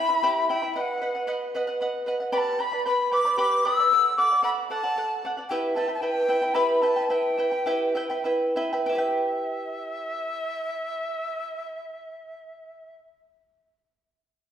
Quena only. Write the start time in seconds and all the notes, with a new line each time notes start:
Already playing: B5
0.49 G5
0.77 F#5 G5
2.33 B5
2.37 A5
2.60 B5
2.86 B5
3.12 D6
3.39 D6
3.65 E6
4.17 D6
4.44 B5
4.70 A5
5.48 G5
5.74 A5
5.94 A5
6.00 G5
6.54 B5
6.74 B5
6.81 A5
7.02 A5
7.10 G5
8.91 E5